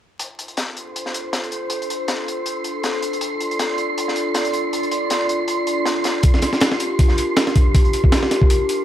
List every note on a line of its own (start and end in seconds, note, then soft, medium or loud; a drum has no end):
0.19 8.85 D4 medium
0.19 8.85 F4 medium
0.19 6.20 A4 medium
0.19 3.19 C5 medium
0.19 8.85 C6 medium
0.19 closed hi-hat medium
0.39 closed hi-hat medium
0.48 closed hi-hat soft
0.57 snare loud
0.57 closed hi-hat medium
0.77 closed hi-hat medium
0.96 closed hi-hat medium
1.06 snare soft
1.14 closed hi-hat medium
1.33 snare loud
1.33 closed hi-hat medium
1.44 closed hi-hat soft
1.52 closed hi-hat medium
1.70 closed hi-hat medium
1.82 closed hi-hat soft
1.90 closed hi-hat medium
2.08 snare loud
2.08 closed hi-hat medium
2.28 closed hi-hat medium
2.46 closed hi-hat medium
2.64 closed hi-hat medium
2.83 snare loud
2.83 closed hi-hat medium
3.02 closed hi-hat medium
3.13 closed hi-hat soft
3.21 6.21 D5 medium
3.21 closed hi-hat medium
3.40 closed hi-hat medium
3.51 closed hi-hat soft
3.59 snare loud
3.59 closed hi-hat medium
3.78 closed hi-hat medium
3.98 closed hi-hat medium
4.08 snare soft
4.16 closed hi-hat medium
4.34 snare loud
4.34 closed hi-hat medium
4.45 closed hi-hat soft
4.53 closed hi-hat medium
4.73 closed hi-hat medium
4.83 closed hi-hat soft
4.91 closed hi-hat medium
5.10 snare loud
5.10 closed hi-hat medium
5.29 closed hi-hat medium
5.48 closed hi-hat medium
5.67 closed hi-hat medium
5.86 snare loud
5.86 closed hi-hat medium
6.04 snare loud
6.04 closed hi-hat medium
6.23 8.85 G4 medium
6.23 8.85 A#4 medium
6.23 kick loud
6.23 closed hi-hat medium
6.23 open hi-hat medium
6.34 snare soft
6.42 snare soft
6.42 closed hi-hat medium
6.42 open hi-hat medium
6.53 snare soft
6.53 closed hi-hat soft
6.60 snare loud
6.60 closed hi-hat medium
6.60 open hi-hat medium
6.72 snare medium
6.80 closed hi-hat medium
6.80 open hi-hat medium
6.99 kick loud
6.99 closed hi-hat medium
6.99 open hi-hat medium
7.08 snare medium
7.18 closed hi-hat medium
7.18 open hi-hat medium
7.36 snare loud
7.36 closed hi-hat medium
7.36 open hi-hat medium
7.47 snare soft
7.47 closed hi-hat soft
7.56 kick medium
7.56 closed hi-hat medium
7.56 open hi-hat medium
7.75 kick loud
7.75 closed hi-hat medium
7.75 open hi-hat medium
7.85 closed hi-hat soft
7.93 closed hi-hat medium
7.93 open hi-hat medium
8.04 kick medium
8.12 snare loud
8.12 closed hi-hat medium
8.12 open hi-hat medium
8.23 snare medium
8.31 snare soft
8.31 closed hi-hat medium
8.31 open hi-hat medium
8.41 kick medium
8.50 closed hi-hat medium
8.50 open hi-hat medium
8.69 closed hi-hat medium
8.69 open hi-hat medium